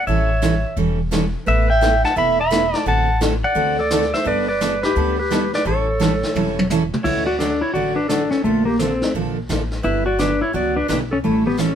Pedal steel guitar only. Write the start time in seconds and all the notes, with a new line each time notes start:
0.07 E5
1.48 E5
1.70 G5
2.05 A5
2.18 B5
2.41 B5
2.88 A5
3.44 F#5
3.80 D5
4.14 E5
4.27 D5
4.48 D5
4.83 B4
5.19 B4
5.55 D5
5.67 C#5
7.04 E4
7.27 F#4
7.39 D4
7.61 E4
7.74 F#4
7.96 D4
8.09 D4
8.31 C#4
8.44 A3
8.65 A#3
8.79 C4
9.84 E4
10.06 F#4
10.19 D4
10.41 E4
10.54 F#4
10.76 D4
10.90 D4
11.13 C#4
11.24 A3
11.47 B3
11.60 C#4